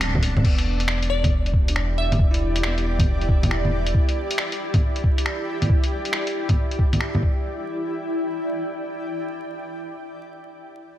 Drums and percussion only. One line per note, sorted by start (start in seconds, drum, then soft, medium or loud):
0.01 finger snap loud
0.01 closed hi-hat medium
0.14 kick medium
0.14 low bongo medium
0.23 open hi-hat medium
0.37 low bongo medium
0.44 kick loud
0.44 crash medium
0.59 closed hi-hat soft
0.80 closed hi-hat medium
0.88 finger snap loud
1.03 closed hi-hat soft
1.24 kick loud
1.24 closed hi-hat medium
1.24 low bongo medium
1.46 closed hi-hat soft
1.54 kick loud
1.68 closed hi-hat medium
1.76 finger snap loud
2.12 closed hi-hat medium
2.12 low bongo medium
2.19 kick loud
2.34 closed hi-hat soft
2.56 closed hi-hat medium
2.63 finger snap loud
2.78 closed hi-hat soft
2.99 kick loud
2.99 closed hi-hat medium
2.99 low bongo medium
3.21 closed hi-hat soft
3.29 kick loud
3.43 closed hi-hat medium
3.43 low bongo medium
3.51 finger snap loud
3.65 low bongo medium
3.86 closed hi-hat medium
3.95 kick loud
4.09 closed hi-hat soft
4.31 closed hi-hat medium
4.38 finger snap loud
4.52 closed hi-hat soft
4.74 kick loud
4.74 closed hi-hat medium
4.74 low bongo medium
4.96 closed hi-hat soft
5.04 kick loud
5.18 closed hi-hat medium
5.26 finger snap loud
5.62 closed hi-hat medium
5.62 low bongo medium
5.70 kick loud
5.84 closed hi-hat soft
6.05 closed hi-hat medium
6.13 finger snap medium
6.27 closed hi-hat soft
6.49 kick loud
6.49 closed hi-hat soft
6.49 low bongo medium
6.71 closed hi-hat soft
6.79 kick loud
6.93 closed hi-hat soft
6.93 low bongo medium
7.01 finger snap loud
7.15 low bongo medium
7.23 kick loud